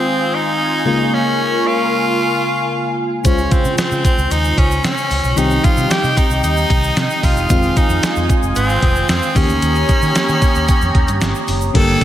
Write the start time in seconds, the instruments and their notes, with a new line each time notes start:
Already playing: fm electric piano D#3 G#3 C4 F4, tenor saxophone C4, analog synth pad F4 G#5 D#6
0.34 tenor saxophone D#4
0.85 fm electric piano C#3 G#3 A#3 F4, analog synth pad A#4 C#6
1.14 tenor saxophone C#4
1.67 tenor saxophone F4
3.24 fingered electric bass C#2, fm electric piano C#3 G#3 F4 C5, tenor saxophone C#4, kick, closed hi-hat, shaker
3.38 shaker
3.51 tenor saxophone C4, kick, closed hi-hat, shaker
3.65 fingered electric bass C#3, shaker
3.78 tenor saxophone C4, muted fingered electric bass stroke, snare, closed hi-hat, shaker
3.91 fingered electric bass C#3, shaker
4.05 tenor saxophone C4, kick, closed hi-hat, shaker
4.18 fingered electric bass C#2, shaker
4.31 fingered electric bass D#2, tenor saxophone D#4, closed hi-hat, shaker
4.44 shaker
4.58 fingered electric bass C#2, tenor saxophone C#4, kick, closed hi-hat
4.71 shaker
4.84 fingered electric bass C#3, tenor saxophone C#4, snare, closed hi-hat, shaker
4.97 shaker
5.11 fingered electric bass C#2, open hi-hat, shaker
5.24 fingered electric bass B1, shaker
5.36 fingered electric bass C2, fm electric piano D#3 G3 C4 G4, tenor saxophone D#4, analog synth pad D#4 G5 D#6, closed hi-hat, shaker
5.51 shaker
5.64 tenor saxophone F4, kick, closed hi-hat, shaker
5.77 fingered electric bass C3, shaker
5.90 tenor saxophone G4, muted fingered electric bass stroke, snare, closed hi-hat, shaker
6.04 fingered electric bass C3, shaker
6.17 tenor saxophone D#4, kick, closed hi-hat, shaker
6.30 fingered electric bass C2, shaker
6.43 fingered electric bass D#2, tenor saxophone D#4, closed hi-hat, shaker
6.57 shaker
6.70 fingered electric bass C2, kick, closed hi-hat
6.83 shaker
6.96 fingered electric bass C3, snare, closed hi-hat, shaker
7.10 shaker
7.23 fingered electric bass C2, tenor saxophone F4, kick, open hi-hat, shaker
7.36 fingered electric bass E1, shaker
7.49 fm electric piano D#3 G#3 C4 F4, analog synth pad F4 G#5, kick, closed hi-hat, shaker
7.63 shaker
7.76 tenor saxophone D#4, kick, closed hi-hat, shaker
7.90 fingered electric bass F2, shaker
8.03 muted fingered electric bass stroke, snare, closed hi-hat, shaker
8.16 fingered electric bass F2, shaker
8.29 kick, closed hi-hat, shaker
8.43 fingered electric bass F1, shaker
8.56 fingered electric bass G#1, tenor saxophone C4, closed hi-hat, shaker
8.69 shaker
8.82 fingered electric bass F1, kick, closed hi-hat
8.96 shaker
9.09 fingered electric bass F2, tenor saxophone C4, snare, closed hi-hat, shaker
9.22 shaker
9.35 fingered electric bass D#2, fm electric piano D#3 A#3 C#4 G4, tenor saxophone C#4, analog synth pad G4 C#5 A#5, kick, open hi-hat, shaker
9.49 fingered electric bass D2, shaker
9.62 fingered electric bass D#2, closed hi-hat, shaker
9.75 shaker
9.89 kick, closed hi-hat, shaker
10.02 fingered electric bass D#3, shaker
10.15 muted fingered electric bass stroke, snare, closed hi-hat, shaker
10.29 fingered electric bass D#3, shaker
10.42 kick, closed hi-hat, shaker
10.55 fingered electric bass D#2, shaker
10.68 kick, closed hi-hat, shaker
10.81 fingered electric bass F2, shaker
10.95 fingered electric bass D#2, kick, closed hi-hat
11.08 fingered electric bass G2, closed hi-hat, shaker
11.21 fingered electric bass G1, snare, closed hi-hat, shaker
11.35 shaker
11.48 fingered electric bass F#1, open hi-hat, shaker
11.61 shaker
11.74 fingered electric bass G1, fm electric piano D3 G3 A#3 G4, analog synth pad A#3 G4 A5 D6, tenor saxophone A4, kick, closed hi-hat, crash